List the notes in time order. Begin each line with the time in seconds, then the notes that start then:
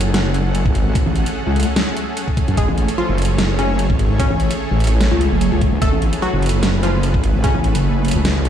Already playing: F#1 A3 C#4 G#4 A4 F#5
0.01 closed hi-hat
0.14 snare, closed hi-hat
0.34 closed hi-hat
0.55 closed hi-hat
0.66 G#1, kick
0.75 closed hi-hat
0.95 kick, closed hi-hat
1.06 A1
1.16 closed hi-hat
1.26 closed hi-hat
1.47 C#2
1.56 closed hi-hat
1.60 closed hi-hat
1.63 closed hi-hat
1.76 snare, closed hi-hat
1.97 closed hi-hat
2.17 closed hi-hat
2.28 kick
2.37 kick, closed hi-hat
2.48 F#2, closed hi-hat
2.57 F#1 G#3 G#4 C#5, kick, closed hi-hat
2.68 A1
2.78 closed hi-hat
2.88 closed hi-hat
2.98 F3 F4
3.09 F#1
3.18 closed hi-hat
3.22 closed hi-hat
3.25 closed hi-hat
3.38 snare, closed hi-hat
3.59 C#3 C#4, closed hi-hat
3.79 closed hi-hat
3.90 G#1, kick
3.99 closed hi-hat
4.19 C#3 C#4, kick, closed hi-hat
4.30 A1
4.40 closed hi-hat
4.51 closed hi-hat
4.71 A1
4.80 closed hi-hat
4.84 closed hi-hat
4.87 closed hi-hat
5.01 snare, closed hi-hat
5.12 C#2
5.21 closed hi-hat
5.32 F#1
5.41 closed hi-hat
5.52 C#2
5.61 kick, closed hi-hat
5.72 C#2
5.82 F#1 A3 A4 B4, kick, closed hi-hat
5.93 A1
6.02 closed hi-hat
6.13 closed hi-hat
6.22 F#3 F#4
6.33 F#1
6.42 closed hi-hat
6.46 closed hi-hat
6.49 closed hi-hat
6.63 snare, closed hi-hat
6.83 F3 F4, closed hi-hat
7.03 closed hi-hat
7.14 G#1, kick
7.24 closed hi-hat
7.44 C#3 C#4, kick, closed hi-hat
7.55 A1
7.64 closed hi-hat
7.75 F#1, closed hi-hat
8.05 closed hi-hat
8.08 closed hi-hat
8.11 closed hi-hat
8.15 C#2
8.25 snare, closed hi-hat
8.45 closed hi-hat